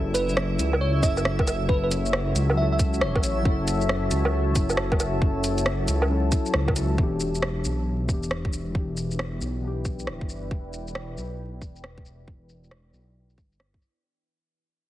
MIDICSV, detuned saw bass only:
0, 0, Header, 1, 2, 480
1, 0, Start_track
1, 0, Tempo, 441176
1, 1839, Time_signature, 4, 2, 24, 8
1, 16200, End_track
2, 0, Start_track
2, 0, Title_t, "Detuned saw bass"
2, 0, Program_c, 0, 39
2, 0, Note_on_c, 0, 30, 99
2, 627, Note_off_c, 0, 30, 0
2, 639, Note_on_c, 0, 37, 92
2, 1108, Note_off_c, 0, 37, 0
2, 1118, Note_on_c, 0, 30, 86
2, 2548, Note_off_c, 0, 30, 0
2, 2560, Note_on_c, 0, 37, 88
2, 3286, Note_on_c, 0, 28, 88
2, 3302, Note_off_c, 0, 37, 0
2, 3424, Note_off_c, 0, 28, 0
2, 3431, Note_on_c, 0, 33, 92
2, 3747, Note_off_c, 0, 33, 0
2, 3757, Note_on_c, 0, 30, 95
2, 4467, Note_off_c, 0, 30, 0
2, 4479, Note_on_c, 0, 37, 88
2, 4948, Note_off_c, 0, 37, 0
2, 4956, Note_on_c, 0, 30, 86
2, 6387, Note_off_c, 0, 30, 0
2, 6398, Note_on_c, 0, 37, 85
2, 6867, Note_off_c, 0, 37, 0
2, 7119, Note_on_c, 0, 37, 106
2, 7588, Note_off_c, 0, 37, 0
2, 7597, Note_on_c, 0, 28, 95
2, 8307, Note_off_c, 0, 28, 0
2, 8322, Note_on_c, 0, 35, 85
2, 8790, Note_off_c, 0, 35, 0
2, 8800, Note_on_c, 0, 28, 81
2, 10229, Note_off_c, 0, 28, 0
2, 10238, Note_on_c, 0, 35, 89
2, 10957, Note_on_c, 0, 26, 87
2, 10973, Note_off_c, 0, 35, 0
2, 11099, Note_off_c, 0, 26, 0
2, 11111, Note_on_c, 0, 31, 91
2, 11427, Note_off_c, 0, 31, 0
2, 11434, Note_on_c, 0, 28, 91
2, 12146, Note_off_c, 0, 28, 0
2, 12158, Note_on_c, 0, 35, 83
2, 12628, Note_off_c, 0, 35, 0
2, 12636, Note_on_c, 0, 28, 80
2, 14066, Note_off_c, 0, 28, 0
2, 14074, Note_on_c, 0, 35, 83
2, 14554, Note_on_c, 0, 31, 78
2, 14570, Note_off_c, 0, 35, 0
2, 15025, Note_off_c, 0, 31, 0
2, 16200, End_track
0, 0, End_of_file